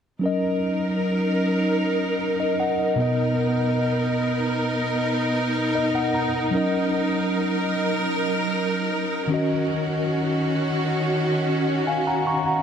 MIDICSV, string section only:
0, 0, Header, 1, 2, 480
1, 0, Start_track
1, 0, Key_signature, 6, "major"
1, 0, Tempo, 789474
1, 132, Time_signature, 4, 2, 24, 8
1, 7676, End_track
2, 0, Start_track
2, 0, Title_t, "String section"
2, 0, Program_c, 0, 48
2, 132, Note_on_c, 0, 70, 78
2, 133, Note_on_c, 0, 54, 72
2, 134, Note_on_c, 0, 63, 64
2, 1795, Note_off_c, 0, 70, 0
2, 1796, Note_off_c, 0, 54, 0
2, 1796, Note_off_c, 0, 63, 0
2, 1810, Note_on_c, 0, 63, 77
2, 1810, Note_on_c, 0, 70, 71
2, 1811, Note_on_c, 0, 59, 65
2, 3950, Note_off_c, 0, 59, 0
2, 3950, Note_off_c, 0, 70, 0
2, 3971, Note_on_c, 0, 54, 68
2, 3974, Note_on_c, 0, 70, 82
2, 5627, Note_off_c, 0, 63, 0
2, 5635, Note_off_c, 0, 54, 0
2, 5636, Note_off_c, 0, 70, 0
2, 5652, Note_on_c, 0, 61, 67
2, 5653, Note_on_c, 0, 51, 74
2, 5653, Note_on_c, 0, 66, 79
2, 7676, Note_off_c, 0, 51, 0
2, 7676, Note_off_c, 0, 61, 0
2, 7676, Note_off_c, 0, 66, 0
2, 7676, End_track
0, 0, End_of_file